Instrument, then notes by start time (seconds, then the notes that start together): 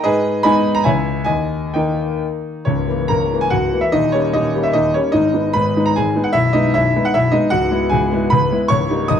grand piano
0.04 G#2 G#4 B4 D#5
0.43 G#3 B3 D#4 D#5 G#5 B5
0.75 A#5
0.84 C#2 G#3 C#4 E4 C#5 E5 G#5
1.24 D#2 D#5 G#5
1.74 D#3 A#3 D#4 A#4 D#5 G5
2.65 C#1 C#2 C#4 C#5
2.88 E3 A#3
3.08 C#1 C#2 A#4 A#5
3.33 E3 A#3
3.41 G#5
3.50 C#1 C#2 F#4 F#5
3.73 E3 A#3
3.81 E5
3.92 D#1 D#2 D#4 D#5
4.12 G3 A#3 C#4 C#5
4.33 D#1 D#2 D#4 D#5
4.55 G3 A#3 C#4
4.63 E5
4.73 D#1 D#2 D#4 D#5
4.94 G3 A#3 C#4 C#5
5.12 G#1 G#2 D#4 D#5
5.34 G#3 B3 D#4
5.53 G#1 G#2 B4 B5
5.76 G#3 B3 D#4
5.86 A#5
5.96 G#1 G#2 G#4 G#5
6.16 G#3 B3 D#4
6.24 F#5
6.33 B0 B1 E4 E5
6.53 G#3 B3 D#4 D#5
6.74 B0 B1 E4 E5
6.96 G#3 B3 D#4
7.05 F#5
7.14 B0 B1 E4 E5
7.32 G#3 B3 D#4 D#5
7.50 C#1 C#2 F#4 F#5
7.71 G#3 B3 E4
7.89 C#1 C#2 G#4 G#5
8.12 G#3 B3 E4
8.30 C#1 C#2 B4 B5
8.51 G#3 B3 E4
8.68 C#1 C#2 C#5 C#6
8.89 G3 A#3 D#4
9.08 C#1 C#2 D#5 D#6